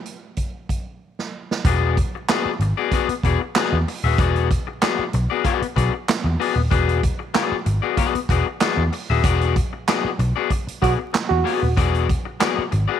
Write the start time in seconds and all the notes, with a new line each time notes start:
0.05 closed hi-hat
0.36 kick, closed hi-hat
0.69 kick, closed hi-hat
1.19 snare
1.51 snare
1.65 E1 B3 F#4 G#4 D5, kick, closed hi-hat
1.97 kick, closed hi-hat
2.15 muted clean electric guitar stroke
2.28 B3 F#4 G#4 D5, snare, clap, closed hi-hat
2.45 muted picked electric bass stroke
2.59 G#1, muted clean electric guitar stroke, closed hi-hat
2.77 B3 F#4 G#4 D5
2.91 B3 F#4 G#4 D5, kick, closed hi-hat
3.09 muted picked electric bass stroke, muted clean electric guitar stroke, closed hi-hat
3.23 E1 B3 F#4 G#4 D5, kick, closed hi-hat
3.41 muted clean electric guitar stroke
3.55 B3 F#4 G#4 D5, snare, clap, closed hi-hat
3.73 E2
3.88 muted clean electric guitar stroke, open hi-hat
4.04 D#1 B3 F#4 G#4 E5
4.18 E1 B3 F#4 G#4 D5, kick, closed hi-hat
4.36 closed hi-hat
4.51 kick, closed hi-hat
4.67 muted clean electric guitar stroke
4.81 B3 F#4 G#4 D5, snare, clap, closed hi-hat
4.99 muted picked electric bass stroke
5.13 B1, muted clean electric guitar stroke, closed hi-hat
5.30 B3 F#4 G#4 D5
5.45 B3 F#4 G#4 D5, kick, closed hi-hat
5.62 muted clean electric guitar stroke, muted picked electric bass stroke, closed hi-hat
5.76 B1 B3 F#4 G#4 D5, kick, closed hi-hat
5.94 muted clean electric guitar stroke
6.08 muted clean electric guitar stroke, snare, clap, closed hi-hat
6.24 E2, muted clean electric guitar stroke
6.40 B3 F#4 G#4 D5, open hi-hat
6.56 D#1, muted clean electric guitar stroke
6.71 E1 B3 F#4 G#4 D5, kick, closed hi-hat
6.89 closed hi-hat
7.03 kick, closed hi-hat
7.19 muted clean electric guitar stroke
7.34 B3 F#4 G#4 D5, snare, clap, closed hi-hat
7.52 muted picked electric bass stroke
7.66 G#1, muted clean electric guitar stroke, closed hi-hat
7.82 B3 F#4 G#4 D5
7.97 B3 F#4 G#4 D5, kick, closed hi-hat
8.15 muted picked electric bass stroke, muted clean electric guitar stroke, closed hi-hat
8.29 E1 B3 F#4 G#4 D5, kick, closed hi-hat
8.47 muted clean electric guitar stroke
8.60 B3 F#4 G#4 D5, snare, clap, closed hi-hat
8.77 E2
8.92 muted clean electric guitar stroke, open hi-hat
9.10 D#1 B3 F#4 G#4 E5
9.23 E1 B3 F#4 G#4 D5, kick, closed hi-hat
9.41 closed hi-hat
9.56 kick, closed hi-hat
9.73 muted clean electric guitar stroke
9.87 B3 F#4 G#4 D5, snare, clap, closed hi-hat
10.05 muted picked electric bass stroke
10.19 B1, muted clean electric guitar stroke, closed hi-hat
10.36 B3 F#4 G#4 D5
10.50 muted clean electric guitar stroke, kick, closed hi-hat
10.67 muted picked electric bass stroke, closed hi-hat
10.82 B1 B3 F#4 G#4 D5, kick, closed hi-hat
10.99 muted clean electric guitar stroke
11.13 muted clean electric guitar stroke, snare, clap, closed hi-hat
11.29 E2 F#4, muted clean electric guitar stroke
11.44 B3 F#4 G#4 D5, open hi-hat
11.62 D#1, muted clean electric guitar stroke
11.77 E1 B3 F#4 G#4 D5, kick, closed hi-hat
11.95 closed hi-hat
12.10 kick, closed hi-hat
12.25 muted clean electric guitar stroke
12.40 B3 F#4 G#4 D5, snare, clap, closed hi-hat
12.58 muted picked electric bass stroke
12.71 G#1, muted clean electric guitar stroke, closed hi-hat
12.88 B3 F#4 G#4 D5